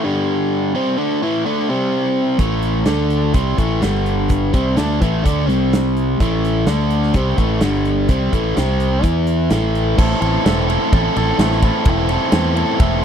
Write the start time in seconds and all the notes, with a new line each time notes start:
0.04 G2 D3 G3
0.75 C3 G3 C4
0.98 D3 A3 D4
1.23 A2 E3 A3
1.46 D3 A3 D4
1.69 C3 G3 C4
2.38 A1 A2 E3 A3, kick, closed hi-hat
2.62 closed hi-hat
2.85 D2 D3 A3 D4, snare, closed hi-hat
3.10 closed hi-hat
3.34 C2 C3 G3 C4, kick, closed hi-hat
3.58 A1 A2 E3 A3, kick, closed hi-hat
3.81 G1 G2 D3 G3, snare, closed hi-hat
4.06 closed hi-hat
4.29 kick, closed hi-hat
4.54 C2 C3 G3 C4, kick, closed hi-hat
4.77 D2 D3 A3 D4, snare, closed hi-hat
5.02 A1 A2 E3 A3, kick, closed hi-hat
5.24 D2 D3 A3 D4, kick, closed hi-hat
5.48 C2 C3 G3 C4, closed hi-hat
5.73 snare, closed hi-hat
5.97 closed hi-hat
6.20 A1 A2 E3 A3, kick, closed hi-hat
6.45 closed hi-hat
6.67 D2 D3 A3 D4, snare, closed hi-hat
6.91 closed hi-hat
7.03 snare
7.14 C2 C3 G3 C4, kick, closed hi-hat
7.37 A1 A2 E3 A3, kick, closed hi-hat
7.61 G1 G2 D3 G3, snare, closed hi-hat
7.85 closed hi-hat
8.08 C2 C3 G3 C4, kick, closed hi-hat
8.33 A1 A2 E3 A3, kick, closed hi-hat
8.56 C2 C3 G3 C4, snare, closed hi-hat
8.80 closed hi-hat
9.03 E2 E3 B3 E4, kick, closed hi-hat
9.27 closed hi-hat
9.50 A1 A2 E3 A3, snare, closed hi-hat
9.75 closed hi-hat
9.97 A1 A2 E3 C4 E4 A4, kick, crash
10.20 A1 A2 E3 C4 E4 A4, ride
10.45 E1 A2 E3 C4 E4 A4, snare, ride
10.69 A2 E3 C4 E4 A4, ride
10.93 A1 A2 E3 C4 E4 A4, kick, ride
11.16 A1 A2 E3 C4 E4 A4, ride
11.39 A1 A2 E3 C4 E4 A4, snare, ride
11.52 snare
11.62 A2 E3 C4 E4 A4, kick, ride
11.85 E1 A2 E3 C4 E4, kick, ride
11.90 A4
12.09 A2 E3 C4 E4 A4, ride
12.32 E2 A2 E3 C4 E4 A4, snare, ride
12.55 A2 E3 C4 E4 A4, ride
12.80 E1 A2 E3 C4 E4 A4, kick, ride